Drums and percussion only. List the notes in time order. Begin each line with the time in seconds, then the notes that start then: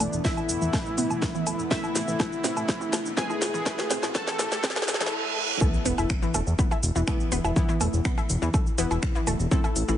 0.00 open hi-hat, low woodblock, shaker
0.13 shaker
0.25 kick, snare, shaker
0.37 low woodblock, shaker
0.49 open hi-hat, shaker
0.62 shaker
0.73 kick, snare, low woodblock, shaker
0.86 shaker
0.98 open hi-hat, shaker
1.10 low woodblock, shaker
1.22 kick, snare, shaker
1.35 shaker
1.47 open hi-hat, low woodblock, shaker
1.59 shaker
1.71 kick, snare, shaker
1.84 low woodblock, shaker
1.96 snare, open hi-hat, shaker
2.08 shaker
2.20 kick, snare, low woodblock, shaker
2.32 shaker
2.44 snare, open hi-hat, shaker
2.57 low woodblock, shaker
2.68 kick, snare, shaker
2.81 shaker
2.93 snare, open hi-hat, low woodblock, shaker
3.06 shaker
3.17 kick, snare, shaker
3.30 low woodblock, shaker
3.42 snare, open hi-hat, shaker
3.54 shaker
3.66 kick, snare, low woodblock, shaker
3.79 snare, shaker
3.91 snare, open hi-hat, shaker
4.03 snare, low woodblock, shaker
4.15 kick, snare, shaker
4.28 snare, shaker
4.39 snare, open hi-hat, low woodblock, shaker
4.52 snare, shaker
4.64 kick, snare, shaker
4.70 snare
4.76 snare, low woodblock, shaker
4.82 snare
4.88 snare, open hi-hat, shaker
4.94 snare
5.01 snare, shaker
5.06 snare
5.61 kick, low woodblock, shaker
5.74 shaker
5.86 open hi-hat, shaker
5.98 low woodblock, shaker
6.10 finger snap, kick, shaker
6.23 shaker
6.34 open hi-hat, low woodblock, shaker
6.47 shaker
6.59 kick, shaker
6.71 low woodblock, shaker
6.83 open hi-hat, shaker
6.96 shaker
7.07 finger snap, kick, low woodblock, shaker
7.20 shaker
7.32 open hi-hat, shaker
7.45 low woodblock, shaker
7.56 kick, shaker
7.69 shaker
7.81 open hi-hat, low woodblock, shaker
7.93 shaker
8.05 finger snap, kick, shaker
8.18 low woodblock, shaker
8.30 open hi-hat, shaker
8.42 shaker
8.54 kick, low woodblock, shaker
8.67 shaker
8.78 open hi-hat, shaker
8.91 low woodblock, shaker
9.03 finger snap, kick, shaker
9.15 shaker
9.27 open hi-hat, low woodblock, shaker
9.40 shaker
9.51 kick, shaker
9.64 low woodblock, shaker
9.76 open hi-hat, shaker
9.88 shaker